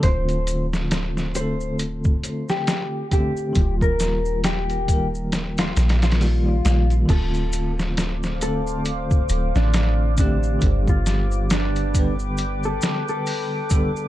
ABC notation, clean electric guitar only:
X:1
M:4/4
L:1/16
Q:"Swing 16ths" 1/4=68
K:Dphr
V:1 name="Clean electric guitar"
c3 z3 c2 z3 G3 G2- | G B3 G3 z2 F2 F4 z | A3 z3 A2 z3 D3 D2- | D F3 D3 z2 A2 A4 z |]